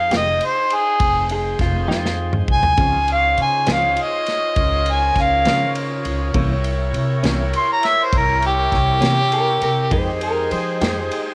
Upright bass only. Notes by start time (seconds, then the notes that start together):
0.11 F1
1.00 F1
1.59 F1
1.88 F2
2.48 C2
2.78 C#2
3.38 C#3
3.67 C#2
4.56 C#2
5.16 C#2
5.46 C#3
6.05 C#2
6.35 C2
6.93 C3
7.23 C2
8.13 C2
8.73 C2
9.02 C3
9.62 C3
9.92 F2
10.51 F3
10.81 F2